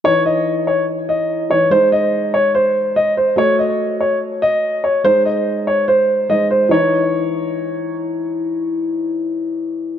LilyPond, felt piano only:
\new Staff \with { instrumentName = "Felt piano" } { \time 4/4 \key cis \minor \tempo 4 = 144 <e dis' cis''>2.~ <e dis' cis''>8 <e dis' cis''>8 | <gis dis' bis'>1 | <a fis' cis''>1 | <gis dis' bis'>2. <gis dis' bis'>4 |
<e dis' cis''>1~ | <e dis' cis''>1 | }